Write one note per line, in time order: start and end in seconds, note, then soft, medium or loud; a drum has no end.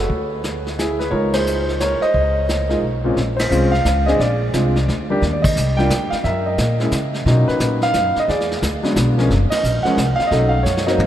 0.00 0.42 F#4 medium
0.00 0.40 A4 medium
0.09 1.08 D2 medium
0.09 brush sweep soft
0.09 kick soft
0.44 snare medium
0.44 hi-hat pedal soft
0.66 snare soft
0.79 1.00 E4 medium
0.79 0.99 G#4 medium
0.79 snare medium
0.79 hi-hat pedal medium
0.99 1.12 G#4 medium
0.99 1.12 B4 medium
0.99 snare soft
1.10 1.98 C#2 medium
1.10 2.06 G#3 medium
1.10 2.07 A#3 soft
1.10 2.07 D#4 soft
1.10 2.07 F4 medium
1.10 1.32 A#4 medium
1.10 1.32 C#5 medium
1.10 brush sweep soft
1.10 kick soft
1.33 1.77 G#4 medium
1.33 1.82 C5 medium
1.33 snare medium
1.33 ride medium
1.47 hi-hat pedal medium
1.68 snare soft
1.80 2.01 A#4 medium
1.80 2.01 C#5 loud
1.80 snare medium
1.80 hi-hat pedal soft
2.01 2.79 C5 medium
2.01 2.79 D#5 loud
2.01 muted upright bass stroke soft
2.01 snare soft
2.14 2.79 C#2 medium
2.14 brush sweep soft
2.14 kick soft
2.49 snare medium
2.49 hi-hat pedal soft
2.69 2.81 G#3 medium
2.69 2.81 A#3 medium
2.69 2.81 D#4 medium
2.69 2.81 F4 medium
2.69 snare soft
2.82 3.14 B1 medium
3.04 3.16 A#2 medium
3.04 3.16 G#3 medium
3.04 3.16 C4 medium
3.04 3.16 C#4 medium
3.04 3.16 F4 medium
3.17 3.50 A#1 medium
3.17 brush sweep medium
3.17 kick soft
3.17 snare soft
3.37 3.73 C5 medium
3.37 snare medium
3.37 ride medium
3.50 3.84 C2 medium
3.50 3.71 G#3 medium
3.50 3.71 C4 medium
3.50 3.71 C#4 medium
3.50 3.71 F4 medium
3.50 hi-hat pedal medium
3.72 4.08 F5 loud
3.72 snare soft
3.85 4.18 C#2 medium
3.85 kick soft
3.85 snare medium
3.85 hi-hat pedal medium
4.06 4.18 G#3 medium
4.06 4.18 C4 medium
4.06 4.19 D4 medium
4.06 4.19 G#4 medium
4.06 4.19 D#5 medium
4.06 snare soft
4.19 4.52 A#1 medium
4.19 5.06 G#4 medium
4.19 5.06 D5 medium
4.19 brush sweep soft
4.19 kick soft
4.19 snare soft
4.53 4.87 C2 medium
4.53 4.73 G#3 medium
4.53 4.73 C4 medium
4.53 4.74 D4 medium
4.53 4.74 F4 medium
4.53 kick soft
4.53 snare medium
4.53 hi-hat pedal medium
4.76 snare soft
4.88 5.21 D2 medium
4.88 kick soft
4.88 snare soft
5.10 5.21 G3 medium
5.10 5.21 A#3 medium
5.10 5.21 D4 medium
5.10 5.21 G4 medium
5.22 5.55 D#2 medium
5.22 brush sweep medium
5.22 kick soft
5.22 snare soft
5.33 5.43 D5 medium
5.42 5.78 D#5 medium
5.42 kick medium
5.42 crash medium
5.56 5.89 C2 medium
5.56 hi-hat pedal medium
5.77 5.89 G3 medium
5.77 5.89 A#3 medium
5.77 5.89 D4 medium
5.77 5.90 F4 medium
5.77 6.12 G5 loud
5.77 snare soft
5.90 6.10 D2 medium
5.90 kick soft
5.90 snare medium
5.90 hi-hat pedal medium
6.10 6.15 F5 medium
6.10 muted upright bass stroke soft
6.10 snare soft
6.24 6.57 F#2 medium
6.24 6.46 A#4 medium
6.24 6.46 E5 medium
6.24 brush sweep soft
6.24 kick soft
6.24 snare soft
6.46 7.11 A#4 soft
6.46 7.10 D#5 medium
6.58 6.91 A#2 medium
6.58 kick soft
6.58 snare medium
6.58 hi-hat pedal medium
6.80 6.91 G#3 medium
6.80 6.91 A#3 medium
6.80 6.91 C#4 medium
6.80 6.91 E4 medium
6.80 snare soft
6.91 7.25 C#3 medium
6.91 kick soft
6.91 snare medium
6.91 hi-hat pedal medium
7.14 snare soft
7.26 8.21 A#2 medium
7.26 7.46 B2 medium
7.26 8.21 F#3 medium
7.26 8.21 C#4 medium
7.26 8.21 D#4 medium
7.26 brush sweep soft
7.26 kick soft
7.26 snare soft
7.48 7.83 B4 medium
7.48 muted upright bass stroke soft
7.48 snare soft
7.60 7.93 A#2 medium
7.60 kick soft
7.60 snare medium
7.60 hi-hat pedal medium
7.82 8.17 F5 loud
7.82 snare soft
7.94 8.14 F#2 medium
7.94 kick soft
7.94 snare medium
7.94 hi-hat pedal medium
8.16 8.24 D#5 medium
8.16 muted upright bass stroke soft
8.16 snare soft
8.28 8.61 E2 medium
8.28 9.14 G#4 medium
8.28 9.14 D5 medium
8.28 brush sweep soft
8.28 kick soft
8.28 snare soft
8.40 snare soft
8.51 snare soft
8.62 8.95 D2 medium
8.62 kick soft
8.62 snare medium
8.62 hi-hat pedal medium
8.83 9.15 F#3 medium
8.83 9.15 G#3 medium
8.83 9.16 B3 medium
8.83 9.16 D4 medium
8.83 snare soft
8.96 9.29 B1 medium
8.96 kick soft
8.96 snare medium
8.96 hi-hat pedal medium
9.18 9.29 F3 medium
9.18 9.29 G#3 medium
9.18 9.29 A#3 medium
9.18 9.29 C#4 medium
9.18 snare soft
9.30 9.50 F#1 medium
9.30 brush sweep soft
9.30 kick soft
9.30 snare soft
9.50 9.86 D#5 medium
9.50 muted upright bass stroke soft
9.50 snare medium
9.50 ride medium
9.63 9.84 A#1 medium
9.63 hi-hat pedal medium
9.83 9.96 F3 medium
9.83 9.97 G#3 medium
9.83 9.97 A#3 medium
9.83 9.97 C#4 medium
9.83 10.19 F#5 medium
9.83 muted upright bass stroke soft
9.83 snare soft
9.97 10.18 C2 medium
9.97 kick soft
9.97 snare medium
9.97 hi-hat pedal medium
10.16 10.30 F5 loud
10.16 muted upright bass stroke soft
10.16 snare soft
10.27 10.52 D#5 medium
10.31 10.64 B1 medium
10.31 10.51 F#3 soft
10.31 10.51 A3 soft
10.31 10.52 C#4 medium
10.31 10.52 D#4 medium
10.31 10.84 A4 medium
10.31 brush sweep soft
10.31 kick soft
10.31 snare soft
10.49 10.62 F5 medium
10.63 10.97 F#2 medium
10.63 10.85 C#5 medium
10.63 snare soft
10.63 hi-hat pedal medium
10.77 snare medium
10.86 10.98 F#3 medium
10.86 10.98 A#3 medium
10.86 10.98 C4 medium
10.86 10.99 D#4 medium
10.86 11.07 D#5 medium
10.86 snare medium
10.91 11.07 C5 medium
10.98 11.07 G#2 medium
10.98 high tom medium